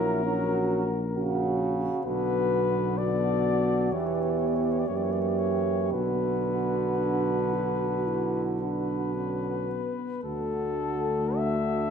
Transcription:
Already playing: A#1 F#3 A#3 E4 A#4
0.23 F#3 C#4 F#4
1.14 C#3 C#4 F#4
2.05 B1 D3 B3 F#4 B4
2.98 D3 B3 F#4 D5
3.91 E2 E3 B3 G4 C#5
4.00 D5
4.06 C#5
4.15 D5
4.22 C#5
4.30 D5
4.38 C#5
4.47 D5
4.55 C#5
4.63 D5
4.71 C#5
4.80 D5
4.88 F#2 E3 A#3 G4 C#5
4.96 D5
5.04 C#5
5.12 D5
5.21 C#5
5.29 D5
5.39 C#5
5.92 B1 D3 B3 F#4 B4
7.00 D4
7.53 F#4
8.07 E4
8.61 D4 B4
9.16 C#4
9.70 B3
10.24 D2 D3 A3 F#4 A4
11.36 E5

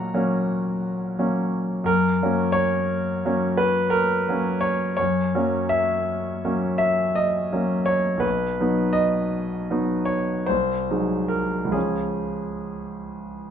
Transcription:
Already playing: A#2 F#3 A#3 C#4 F#5 A#5
0.14 F#3 A#3 C#4
1.19 F#3 A#3 C#4
1.84 F#2 A#4
2.23 F#3 A#3 C#4
2.52 C#5
3.25 F#3 A#3 C#4
3.57 B4
3.90 A#4
4.29 F#3 A#3 C#4
4.61 C#5
4.97 F#2 C#5
5.35 F#3 A#3 C#4
5.69 E5
6.45 F#3 A#3 C#4
6.78 E5
7.15 D#5
7.53 F#3 A#3 C#4
7.86 C#5
8.17 B1 B4
8.60 F#3 B3 D#4
8.93 D#5
9.70 F#3 B3 D#4
10.05 C#5
10.46 C2 C5
10.90 F#3 G#3 D#4
11.28 A#4
11.65 C#2
11.71 F3 G#3 C#4 G#4

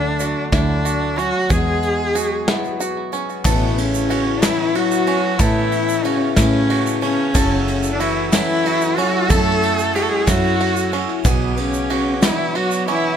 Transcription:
Already playing: D2 D3 F#3 A3 D4 F#4 A4
0.19 D3 A3 D4 F#4, closed hi-hat, shaker
0.52 D2 D3 F#3 A3 D4 E4 F#4 A4, kick, snare, closed hi-hat, shaker
0.85 F#4, closed hi-hat, shaker
1.16 F#3 A3 C#4 D4 F#4, closed hi-hat
1.49 E2 B2 F#3 G#3 B3 E4 F#4 G#4, kick, closed hi-hat, shaker
1.83 closed hi-hat
2.15 F#3 G#3 B3 F#4, closed hi-hat, shaker
2.48 E2 B2 F#3 G#3 B3 E4 F#4 G#4, snare, closed hi-hat
2.64 shaker
2.80 F#4, closed hi-hat, shaker
3.12 F#3 G#3 B3 C#4 F#4, closed hi-hat, shaker
3.30 shaker
3.45 A1 A2 B2 E3 B3 C#4 E4 A4 B4 C#5 A5 C#6, kick, clap, ride, shaker
3.78 C#3 C#4, ride, shaker
3.94 shaker
4.09 E3 B3 C#4 E4 F#4, ride
4.42 A2 E3 B3 C#4 E4 A4 C#5, snare, clap, ride, shaker
4.75 F#3 F#4, ride
4.91 clap, shaker
5.06 B3 C#4 E4, ride
5.39 A1 A2 E3 B3 C#4 E4 A4 C#5, kick, clap, ride, shaker
5.72 ride, shaker
5.89 shaker
6.04 C#3 E3 B3 C#4 E4 F#4, ride
6.36 A2 C#3 E3 B3 C#4 E4 A4 C#5, kick, snare, clap, ride, shaker
6.70 F#4, ride
6.87 clap, shaker
7.01 C#3 B3 C#4 E4, ride
7.34 F#1 F#2 F#3 A3 C#4 E4 A4 C#5 F#5 E6, kick, clap, ride, shaker
7.68 ride, shaker
7.83 shaker
7.92 D3 D4
7.99 E3 F#3 A3 C#4 E4 F#4, ride
8.32 E3 F#3 A3 C#4 E4 A4 C#5, snare, clap, ride, shaker
8.66 F#4, ride
8.81 clap, shaker
8.97 F#3 A3 C#4 E4 F#4, ride
9.29 F#1 F#2 F#3 A3 C#4 E4 A4 C#5, kick, clap, ride, shaker
9.47 clap
9.63 ride
9.79 shaker
9.94 F#3 G#3 A3 C#4 E4 F#4 G#4, ride, shaker
10.02 A3 A4
10.09 G#3 G#4
10.27 F#2 F#3 A3 C#4 E4 F#4 A4 C#5, kick, snare, clap, ride, shaker
10.44 shaker
10.60 F#4, ride
10.76 shaker
10.92 A3 C#4 E4, ride, shaker
11.10 clap
11.25 B1 B2 F#3 B3 F#4 G#4 B4 F#5 D6, kick, clap, ride, shaker
11.57 C#3 C#4, ride, shaker
11.74 shaker
11.90 F#3 B3 F#4, ride
12.22 B2 E3 F#3 B3 D4 E4 F#4 B4 D5, snare, clap, ride, shaker
12.55 F#3 F#4, ride
12.71 shaker
12.87 E3 B3 C#4 D4 E4 F#4, ride

